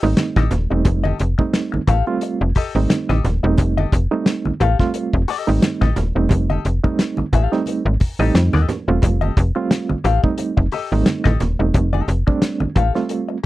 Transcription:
0.02 G#1 G3 A3 C4 D#4, muted hollow-body jazz guitar stroke
0.17 muted hollow-body jazz guitar stroke, snare, closed hi-hat, high conga
0.36 A1 G4 A4 D#5, kick, snare, high conga
0.51 D#1, muted hollow-body jazz guitar stroke, snare, closed hi-hat, muted conga, low conga
0.70 E1 G3 A3 C4 D#4, muted hollow-body jazz guitar stroke
0.85 F1, muted hollow-body jazz guitar stroke, kick, closed hi-hat, muted conga, low conga
1.04 G4 A4 D#5, high conga
1.19 F1, muted hollow-body jazz guitar stroke, closed hi-hat, muted conga
1.38 G3 A3 C4 D#4, muted hollow-body jazz guitar stroke, kick
1.53 snare, closed hi-hat, muted conga
1.72 A1, muted hollow-body jazz guitar stroke, high conga
1.87 A1 G4 A4 F5, kick, closed hi-hat, muted conga, low conga
2.07 G3 A3 C4 F4, muted hollow-body jazz guitar stroke
2.21 muted hollow-body jazz guitar stroke, closed hi-hat
2.41 F1, muted hollow-body jazz guitar stroke
2.55 G4 A4 D#5, kick, open hi-hat
2.75 G#1 G3 A3 C4 D#4, muted hollow-body jazz guitar stroke
2.90 muted hollow-body jazz guitar stroke, snare, closed hi-hat, high conga
3.09 A1 G4 A4 D#5, snare, high conga
3.24 D#1, muted hollow-body jazz guitar stroke, snare, closed hi-hat, low conga
3.43 E1 G3 A3 C4 D#4, muted hollow-body jazz guitar stroke
3.58 F1, muted hollow-body jazz guitar stroke, kick, closed hi-hat, muted conga, low conga
3.77 G4 A4 D#5, high conga
3.92 F1, muted hollow-body jazz guitar stroke, kick, closed hi-hat, muted conga
4.11 G3 A3 C4 D#4, muted hollow-body jazz guitar stroke
4.26 snare, closed hi-hat
4.45 A1, muted hollow-body jazz guitar stroke, high conga
4.60 A1 G4 A4 F5, closed hi-hat, muted conga, low conga
4.79 G3 A3 C4 F4, muted hollow-body jazz guitar stroke, kick, snare
4.94 muted hollow-body jazz guitar stroke, closed hi-hat
5.13 F1, muted hollow-body jazz guitar stroke, kick
5.28 G4 A4 D#5, open hi-hat
5.47 G#1 G3 A3 C4 D#4, muted hollow-body jazz guitar stroke
5.62 muted hollow-body jazz guitar stroke, snare, closed hi-hat, high conga
5.81 A1 G4 A4 D#5, kick, snare, high conga
5.96 D#1, muted hollow-body jazz guitar stroke, snare, closed hi-hat, low conga
6.16 E1 G3 A3 C4 D#4, muted hollow-body jazz guitar stroke
6.29 F1, muted hollow-body jazz guitar stroke, kick, closed hi-hat, muted conga, low conga
6.50 G4 A4 D#5, high conga
6.65 F1, muted hollow-body jazz guitar stroke, closed hi-hat
6.84 G3 A3 C4 D#4, muted hollow-body jazz guitar stroke, kick
6.99 snare, closed hi-hat
7.17 A1, muted hollow-body jazz guitar stroke, high conga
7.33 A1 G4 A4 F5, kick, closed hi-hat, muted conga, low conga
7.52 G3 A3 C4 D#4, muted hollow-body jazz guitar stroke, snare
7.66 muted hollow-body jazz guitar stroke, closed hi-hat, muted conga
7.86 G#1, muted hollow-body jazz guitar stroke
8.00 kick, open hi-hat, muted conga
8.19 A1 G3 A3 C4 D#4 G4 A4 D#5
8.35 F2, muted hollow-body jazz guitar stroke, snare, closed hi-hat, high conga
8.53 D#2 G4 A4 D#5, snare, high conga
8.68 muted hollow-body jazz guitar stroke, snare, closed hi-hat, low conga
8.88 E1 G3 A3 C4 F4, muted hollow-body jazz guitar stroke
9.02 F1, muted hollow-body jazz guitar stroke, kick, closed hi-hat, low conga
9.21 G4 A4 D#5, high conga
9.36 F1, muted hollow-body jazz guitar stroke, kick, closed hi-hat, muted conga
9.55 G3 A3 C4 F4, muted hollow-body jazz guitar stroke
9.71 snare, closed hi-hat, muted conga
9.89 A1, muted hollow-body jazz guitar stroke, high conga
10.04 A1 G4 A4 F5, closed hi-hat, muted conga, low conga
10.23 G3 A3 C4 D#4, muted hollow-body jazz guitar stroke, kick
10.38 muted hollow-body jazz guitar stroke, closed hi-hat, muted conga
10.57 F1, muted hollow-body jazz guitar stroke, kick
10.72 G4 A4 D#5, open hi-hat, muted conga
10.91 G#1 G3 A3 C4 D#4, muted hollow-body jazz guitar stroke
11.06 muted hollow-body jazz guitar stroke, snare, closed hi-hat, muted conga, high conga
11.24 A1 G4 A4 D#5, kick, snare, high conga
11.40 D#1, muted hollow-body jazz guitar stroke, snare, closed hi-hat, muted conga, low conga
11.59 E1 G3 A3 C4 D#4, muted hollow-body jazz guitar stroke
11.74 F1, muted hollow-body jazz guitar stroke, kick, closed hi-hat, low conga
11.93 G4 A4 D#5, high conga
12.08 F1, muted hollow-body jazz guitar stroke, closed hi-hat, muted conga
12.27 G3 A3 C4 D4, muted hollow-body jazz guitar stroke, kick
12.42 snare, closed hi-hat
12.60 A1, muted hollow-body jazz guitar stroke, high conga
12.75 A1 G4 A4 F5, kick, closed hi-hat, low conga
12.95 G3 A3 C4 F4, muted hollow-body jazz guitar stroke, snare
13.09 muted hollow-body jazz guitar stroke, closed hi-hat
13.29 muted hollow-body jazz guitar stroke

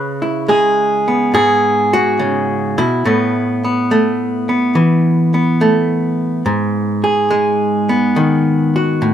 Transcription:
Already playing: C#3 B4
0.22 E4
0.48 G#3 G#4
1.08 B3
1.34 G#2 G#4
1.93 F#4
2.19 C#3
2.78 B2 E4
3.05 A2 A3 B3
3.64 B3
3.91 A3
4.49 B3
4.75 E3
5.34 B3
5.61 A3
6.46 G#2
7.04 G#4
7.30 G#3
7.89 B3
8.16 D#3
8.76 F#4
9.02 A2

